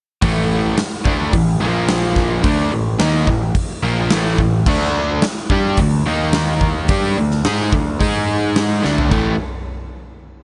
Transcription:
0.22 picked electric bass A1, overdriven electric guitar A2 E3 A3, kick, open hi-hat
0.77 muted overdriven electric guitar stroke, muted picked electric bass stroke, snare, open hi-hat
1.05 picked electric bass D2, overdriven electric guitar D3 A3 D4, kick
1.33 picked electric bass A1, overdriven electric guitar A2 E3, kick, open hi-hat
1.60 picked electric bass A#1, overdriven electric guitar A#2 F3 A#3
1.88 snare, open hi-hat
2.16 kick, snare
2.43 picked electric bass D2, overdriven electric guitar D3 A3 D4, kick, open hi-hat
2.72 picked electric bass A1, overdriven electric guitar A2 E3
2.99 picked electric bass D#2, overdriven electric guitar D#3 A#3 D#4, snare, open hi-hat
3.27 picked electric bass A1, overdriven electric guitar A2 E3, kick
3.55 kick, open hi-hat
3.83 picked electric bass A#1, overdriven electric guitar A#2 F3 A#3
4.10 picked electric bass A1, overdriven electric guitar A2 E3 A3, snare, open hi-hat
4.38 picked electric bass A1, overdriven electric guitar A2 E3, kick
4.66 picked electric bass D2, overdriven electric guitar D3 A3 D4, kick, crash
5.22 muted overdriven electric guitar stroke, muted picked electric bass stroke, snare, open hi-hat
5.50 picked electric bass G2, overdriven electric guitar G3 D4 G4, kick
5.77 picked electric bass D2, overdriven electric guitar D3 A3, kick, open hi-hat
6.06 picked electric bass D#2, overdriven electric guitar D#3 A#3 D#4
6.33 snare, open hi-hat
6.61 kick
6.88 picked electric bass G2, overdriven electric guitar G3 D4 G4, kick, open hi-hat
7.17 picked electric bass D2, overdriven electric guitar D3 A3
7.31 snare
7.45 picked electric bass G#2, overdriven electric guitar G#3 D#4 G#4, snare, open hi-hat
7.73 picked electric bass D2, overdriven electric guitar D3 A3, kick
7.99 picked electric bass G#2, overdriven electric guitar G#3 D#4 G#4, kick, open hi-hat
8.56 snare, open hi-hat
8.82 picked electric bass D2, overdriven electric guitar D3 A3 D4, snare
8.98 floor tom
9.11 picked electric bass A1, overdriven electric guitar A2 E3 A3, kick, china

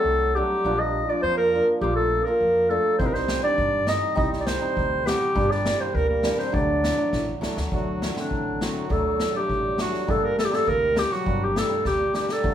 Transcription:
Already playing: hammered dulcimer F#3 A3 C4, trombone A3, clarinet A4
0.05 upright bass C2
0.35 hammered dulcimer F#3 A3 D4, trombone G3, clarinet G4
0.64 upright bass A#1, hammered dulcimer F3 A#3 D4
0.79 clarinet D#5
1.05 trombone D#4
1.09 hammered dulcimer F3 A#3 D4, trombone D4, clarinet D5
1.23 upright bass F2, trombone C4, clarinet C5
1.37 trombone A#3, clarinet A#4
1.54 hammered dulcimer F3 A#3 D4
1.81 upright bass A#1, hammered dulcimer F3 A#3 F4, trombone G3, clarinet G4
1.95 trombone A3, clarinet A4
2.22 trombone C4, clarinet A#4
2.27 hammered dulcimer F3 A#3 F4, trombone A#3
2.40 upright bass F2
2.69 hammered dulcimer F3 A#3 D4, trombone A3, clarinet A4
2.98 upright bass C2, hammered dulcimer G3 C4 D#4, trombone C4, clarinet C5, kick
3.06 clarinet A#4
3.14 trombone C4, clarinet C5, snare
3.28 snare
3.42 hammered dulcimer G3 C4 D#4, trombone D4, clarinet D5
3.58 upright bass G2, kick
3.86 hammered dulcimer G3 C4 D#4, trombone D#4, clarinet D#5, snare
4.15 upright bass C2, hammered dulcimer G3 C4 D#4, trombone D#4, clarinet D#5, kick
4.33 snare
4.40 clarinet D5
4.46 clarinet C5, snare
4.61 hammered dulcimer G3 C4 D#4
4.77 upright bass D2, kick
4.98 trombone A3
5.05 trombone G3, hammered dulcimer G3 C4 F#4, clarinet G4, snare
5.35 upright bass G1, hammered dulcimer G3 A#3 D4, kick
5.51 clarinet D5, snare
5.66 snare
5.80 hammered dulcimer G3 A#3 D4, clarinet C5
5.93 upright bass D2, trombone A#3, clarinet A#4, kick
6.08 trombone A#3, clarinet A#4
6.23 hammered dulcimer G3 A#3 D4, snare
6.37 trombone C4, clarinet C5, snare
6.51 upright bass D2, hammered dulcimer F#3 A3 D4, trombone D4, clarinet D5, kick
6.84 snare
6.97 hammered dulcimer F#3 A3 D4
7.13 upright bass A1, kick, snare
7.41 upright bass C2, hammered dulcimer F#3 A3 D4, snare
7.57 upright bass D2, snare
7.71 upright bass D2, trombone F#3, hammered dulcimer F#3 A3 D4, clarinet F#4, kick
8.02 snare
8.15 trombone D3, hammered dulcimer F#3 A3 C4, clarinet D4, snare
8.31 upright bass A1, kick
8.61 hammered dulcimer F#3 A3 C4, clarinet F#4, snare
8.88 upright bass D2, hammered dulcimer F#3 A3 D4, trombone A3, clarinet A4, kick
9.20 snare
9.32 hammered dulcimer F#3 A3 D4, trombone G3, clarinet G4
9.49 upright bass A1, kick
9.78 hammered dulcimer F#3 A3 D4, clarinet F#4, snare
9.94 snare
10.07 upright bass G1, hammered dulcimer G3 A#3 D4, trombone A3, clarinet A4, kick
10.21 trombone A#3, clarinet A#4
10.36 trombone A3, clarinet A4, snare
10.45 clarinet G4
10.50 hammered dulcimer G3 A#3 C4, trombone A3, clarinet A4, snare
10.65 upright bass D2, trombone A#3, clarinet A#4, kick
10.95 trombone G3, hammered dulcimer G3 A#3 C4, clarinet G4, snare
11.11 trombone F#3, clarinet F#4, snare
11.26 upright bass G1, hammered dulcimer G3 A#3 D4, kick
11.44 clarinet G4
11.55 trombone A3, clarinet A4, snare
11.69 hammered dulcimer G3 A#3 D4
11.85 upright bass D2, trombone G3, clarinet G4, kick, snare
12.13 hammered dulcimer G3 A#3 D4, clarinet G4, snare
12.29 trombone A3, clarinet A4, snare
12.43 upright bass D2, hammered dulcimer F#3 A3 D4, kick

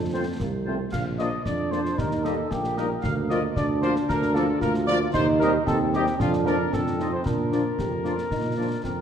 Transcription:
Already playing: tuba F2, trumpet section A4
0.13 french horn section F3 C4, euphonium C4, woodwind section F4 C5
0.40 tuba C2, euphonium A#3, concert bass drum, snare
0.65 french horn section F3 C4, euphonium A3, woodwind section F4 C5
0.91 tuba A#1, trumpet section F5, concert bass drum, snare, crash
1.18 french horn section F3 A#3 D4, woodwind section F4 D5, trumpet section D#5, snare
1.45 tuba F2, euphonium D4, trumpet section D5, concert bass drum, snare
1.71 french horn section F3 A#3 D4, woodwind section F4 D5, trumpet section C5, snare
1.85 snare
1.97 tuba D#2, euphonium D#4, trumpet section A#4, concert bass drum, snare
2.11 snare
2.23 french horn section G3 A#3 D#4, woodwind section G4 D#5, trumpet section A4, snare
2.50 tuba A#1, euphonium A#3, trumpet section G4, concert bass drum, snare
2.64 snare
2.77 french horn section G3 A#3 D#4, woodwind section G4 D#5, trumpet section A#4, snare
3.02 tuba D2, trumpet section F5, concert bass drum, snare
3.30 french horn section F3 A#3 F4, woodwind section A#4 D5, trumpet section D#5, snare
3.56 tuba D2, euphonium D4, trumpet section D5, concert bass drum, snare
3.82 french horn section F3 A#3 F4, woodwind section A#4 D5, trumpet section C5, snare
3.96 snare
4.08 tuba D2, trumpet section A#4, concert bass drum, snare
4.22 snare
4.34 french horn section F3 A#3 F4, trumpet section A4, woodwind section A#4 D5, snare
4.61 tuba D2, euphonium F4, trumpet section A#4, concert bass drum, snare
4.74 snare
4.87 french horn section F3 A#3 F4, woodwind section A#4 D5, trumpet section D5, snare
5.13 tuba D#2, euphonium D#4, trumpet section C5, concert bass drum, snare, crash
5.39 french horn section G3 C4 D#4, woodwind section G4 D#5, trumpet section A#4, snare
5.66 tuba D#2, euphonium C4, trumpet section A4, concert bass drum, snare
5.93 french horn section G3 C4 D#4, trumpet section G4, woodwind section G4 D#5, snare
6.06 snare
6.19 tuba F2, euphonium D4, trumpet section F4, concert bass drum, snare
6.33 snare
6.46 french horn section F3 A#3 D4, trumpet section A#4, woodwind section A#4 D5, snare
6.72 tuba F2, euphonium C4, trumpet section A4, concert bass drum, snare
6.87 snare
6.99 french horn section F3 C4 D#4, woodwind section F4 D#5, snare
7.13 trumpet section C5
7.24 tuba A#2, euphonium D4, trumpet section A#4, concert bass drum, snare
7.51 french horn section F3 A#3 D4, woodwind section F4 D5, snare
7.78 tuba F2, euphonium G4, concert bass drum, snare
8.04 french horn section F3 A#3 D4, euphonium F4, woodwind section F4 D5, snare
8.18 snare
8.31 tuba A#2, euphonium D#4, concert bass drum, snare
8.57 french horn section F3 A#3 D4, euphonium D4, woodwind section F4 D5
8.84 tuba F2, euphonium C4, trumpet section A#4, concert bass drum, snare

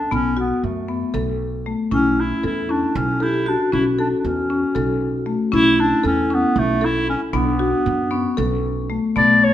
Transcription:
Already playing: clarinet D4
0.11 upright bass B1, marimba B3, clarinet C#4
0.37 clarinet B3, marimba F#4
0.63 upright bass F#2, clarinet A3
0.88 marimba B3
1.14 upright bass B1, marimba A4
1.66 marimba A3
1.91 upright bass B1, marimba C#4, clarinet C#4, vibraphone E4
2.20 clarinet E4
2.43 upright bass E2, clarinet E4, marimba A4
2.69 marimba C#4, clarinet D4
2.95 upright bass B1, clarinet C#4
3.20 clarinet E4, vibraphone G4, marimba A4
3.46 clarinet D4, vibraphone F#4
3.72 upright bass B1, marimba C#4, clarinet E4
3.99 clarinet D4, marimba A4
4.19 clarinet D4
4.24 upright bass E2, clarinet C#4
4.50 marimba C#4
4.75 upright bass B1, marimba A4
5.26 marimba A3
5.52 upright bass B1, marimba C#4, vibraphone E4, clarinet E4
5.80 clarinet D4
6.04 upright bass E2, clarinet C#4, marimba A4
6.31 clarinet B3, marimba C#4
6.56 upright bass B1, clarinet A3
6.81 clarinet E4, marimba A4
7.10 clarinet C#4
7.33 upright bass B1, marimba B3, clarinet B3, vibraphone D4
7.59 marimba F#4
7.86 upright bass F#2
8.11 marimba B3, vibraphone C#4
8.37 upright bass B1, marimba A4
8.90 marimba A3
9.16 upright bass B1, vibraphone A3, marimba B3, clarinet D5
9.44 clarinet C#5

